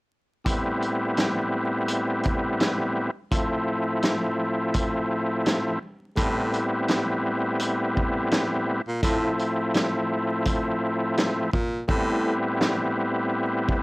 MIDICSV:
0, 0, Header, 1, 4, 480
1, 0, Start_track
1, 0, Key_signature, 0, "minor"
1, 0, Tempo, 714286
1, 310, Time_signature, 4, 2, 24, 8
1, 9293, End_track
2, 0, Start_track
2, 0, Title_t, "Tonewheel organ"
2, 0, Program_c, 0, 16
2, 299, Note_on_c, 0, 45, 92
2, 303, Note_on_c, 0, 55, 83
2, 308, Note_on_c, 0, 59, 84
2, 310, Note_on_c, 0, 60, 87
2, 315, Note_on_c, 0, 64, 104
2, 2081, Note_off_c, 0, 45, 0
2, 2083, Note_off_c, 0, 55, 0
2, 2085, Note_off_c, 0, 59, 0
2, 2086, Note_off_c, 0, 60, 0
2, 2089, Note_off_c, 0, 64, 0
2, 2223, Note_on_c, 0, 45, 94
2, 2227, Note_on_c, 0, 53, 88
2, 2231, Note_on_c, 0, 57, 79
2, 2235, Note_on_c, 0, 60, 79
2, 2238, Note_on_c, 0, 64, 99
2, 3885, Note_off_c, 0, 45, 0
2, 3888, Note_off_c, 0, 53, 0
2, 3889, Note_off_c, 0, 57, 0
2, 3892, Note_off_c, 0, 60, 0
2, 3893, Note_off_c, 0, 64, 0
2, 4137, Note_on_c, 0, 45, 99
2, 4142, Note_on_c, 0, 55, 84
2, 4146, Note_on_c, 0, 59, 83
2, 4150, Note_on_c, 0, 60, 89
2, 4152, Note_on_c, 0, 64, 107
2, 5920, Note_off_c, 0, 45, 0
2, 5923, Note_off_c, 0, 55, 0
2, 5924, Note_off_c, 0, 59, 0
2, 5926, Note_off_c, 0, 60, 0
2, 5928, Note_off_c, 0, 64, 0
2, 6061, Note_on_c, 0, 45, 97
2, 6065, Note_on_c, 0, 53, 85
2, 6070, Note_on_c, 0, 57, 82
2, 6072, Note_on_c, 0, 60, 82
2, 6077, Note_on_c, 0, 64, 102
2, 7724, Note_off_c, 0, 45, 0
2, 7726, Note_off_c, 0, 53, 0
2, 7729, Note_off_c, 0, 57, 0
2, 7730, Note_off_c, 0, 60, 0
2, 7732, Note_off_c, 0, 64, 0
2, 7980, Note_on_c, 0, 45, 98
2, 7984, Note_on_c, 0, 55, 88
2, 7988, Note_on_c, 0, 59, 83
2, 7991, Note_on_c, 0, 60, 91
2, 7995, Note_on_c, 0, 64, 107
2, 9293, Note_off_c, 0, 45, 0
2, 9293, Note_off_c, 0, 55, 0
2, 9293, Note_off_c, 0, 59, 0
2, 9293, Note_off_c, 0, 60, 0
2, 9293, Note_off_c, 0, 64, 0
2, 9293, End_track
3, 0, Start_track
3, 0, Title_t, "Baritone saxophone"
3, 0, Program_c, 1, 67
3, 4150, Note_on_c, 1, 45, 107
3, 4452, Note_off_c, 1, 45, 0
3, 5966, Note_on_c, 1, 46, 90
3, 6051, Note_off_c, 1, 46, 0
3, 6069, Note_on_c, 1, 45, 105
3, 6263, Note_off_c, 1, 45, 0
3, 7752, Note_on_c, 1, 46, 89
3, 7945, Note_off_c, 1, 46, 0
3, 7989, Note_on_c, 1, 45, 107
3, 8291, Note_off_c, 1, 45, 0
3, 9293, End_track
4, 0, Start_track
4, 0, Title_t, "Drums"
4, 309, Note_on_c, 9, 36, 116
4, 309, Note_on_c, 9, 42, 103
4, 376, Note_off_c, 9, 36, 0
4, 376, Note_off_c, 9, 42, 0
4, 552, Note_on_c, 9, 42, 47
4, 619, Note_off_c, 9, 42, 0
4, 786, Note_on_c, 9, 42, 75
4, 793, Note_on_c, 9, 38, 116
4, 795, Note_on_c, 9, 40, 93
4, 853, Note_off_c, 9, 42, 0
4, 860, Note_off_c, 9, 38, 0
4, 862, Note_off_c, 9, 40, 0
4, 1264, Note_on_c, 9, 42, 91
4, 1331, Note_off_c, 9, 42, 0
4, 1501, Note_on_c, 9, 42, 52
4, 1517, Note_on_c, 9, 36, 87
4, 1568, Note_off_c, 9, 42, 0
4, 1584, Note_off_c, 9, 36, 0
4, 1747, Note_on_c, 9, 42, 77
4, 1752, Note_on_c, 9, 38, 117
4, 1754, Note_on_c, 9, 40, 99
4, 1814, Note_off_c, 9, 42, 0
4, 1819, Note_off_c, 9, 38, 0
4, 1821, Note_off_c, 9, 40, 0
4, 2227, Note_on_c, 9, 42, 108
4, 2228, Note_on_c, 9, 36, 111
4, 2294, Note_off_c, 9, 42, 0
4, 2296, Note_off_c, 9, 36, 0
4, 2704, Note_on_c, 9, 42, 72
4, 2712, Note_on_c, 9, 38, 119
4, 2714, Note_on_c, 9, 40, 93
4, 2772, Note_off_c, 9, 42, 0
4, 2779, Note_off_c, 9, 38, 0
4, 2781, Note_off_c, 9, 40, 0
4, 3184, Note_on_c, 9, 42, 91
4, 3190, Note_on_c, 9, 36, 94
4, 3251, Note_off_c, 9, 42, 0
4, 3257, Note_off_c, 9, 36, 0
4, 3668, Note_on_c, 9, 42, 76
4, 3673, Note_on_c, 9, 38, 117
4, 3675, Note_on_c, 9, 40, 105
4, 3735, Note_off_c, 9, 42, 0
4, 3740, Note_off_c, 9, 38, 0
4, 3742, Note_off_c, 9, 40, 0
4, 4147, Note_on_c, 9, 42, 107
4, 4148, Note_on_c, 9, 36, 116
4, 4214, Note_off_c, 9, 42, 0
4, 4216, Note_off_c, 9, 36, 0
4, 4391, Note_on_c, 9, 42, 47
4, 4458, Note_off_c, 9, 42, 0
4, 4624, Note_on_c, 9, 42, 76
4, 4631, Note_on_c, 9, 38, 115
4, 4633, Note_on_c, 9, 40, 93
4, 4691, Note_off_c, 9, 42, 0
4, 4698, Note_off_c, 9, 38, 0
4, 4700, Note_off_c, 9, 40, 0
4, 5104, Note_on_c, 9, 42, 92
4, 5171, Note_off_c, 9, 42, 0
4, 5356, Note_on_c, 9, 36, 86
4, 5423, Note_off_c, 9, 36, 0
4, 5586, Note_on_c, 9, 42, 76
4, 5592, Note_on_c, 9, 38, 120
4, 5593, Note_on_c, 9, 40, 104
4, 5653, Note_off_c, 9, 42, 0
4, 5659, Note_off_c, 9, 38, 0
4, 5661, Note_off_c, 9, 40, 0
4, 6067, Note_on_c, 9, 42, 105
4, 6068, Note_on_c, 9, 36, 114
4, 6134, Note_off_c, 9, 42, 0
4, 6135, Note_off_c, 9, 36, 0
4, 6312, Note_on_c, 9, 42, 47
4, 6379, Note_off_c, 9, 42, 0
4, 6546, Note_on_c, 9, 42, 76
4, 6553, Note_on_c, 9, 38, 114
4, 6555, Note_on_c, 9, 40, 93
4, 6613, Note_off_c, 9, 42, 0
4, 6621, Note_off_c, 9, 38, 0
4, 6622, Note_off_c, 9, 40, 0
4, 7024, Note_on_c, 9, 42, 91
4, 7030, Note_on_c, 9, 36, 92
4, 7092, Note_off_c, 9, 42, 0
4, 7097, Note_off_c, 9, 36, 0
4, 7509, Note_on_c, 9, 42, 77
4, 7514, Note_on_c, 9, 38, 121
4, 7516, Note_on_c, 9, 40, 102
4, 7576, Note_off_c, 9, 42, 0
4, 7581, Note_off_c, 9, 38, 0
4, 7583, Note_off_c, 9, 40, 0
4, 7751, Note_on_c, 9, 36, 93
4, 7818, Note_off_c, 9, 36, 0
4, 7988, Note_on_c, 9, 36, 115
4, 8056, Note_off_c, 9, 36, 0
4, 8472, Note_on_c, 9, 38, 114
4, 8474, Note_on_c, 9, 40, 95
4, 8540, Note_off_c, 9, 38, 0
4, 8542, Note_off_c, 9, 40, 0
4, 9197, Note_on_c, 9, 36, 89
4, 9264, Note_off_c, 9, 36, 0
4, 9293, End_track
0, 0, End_of_file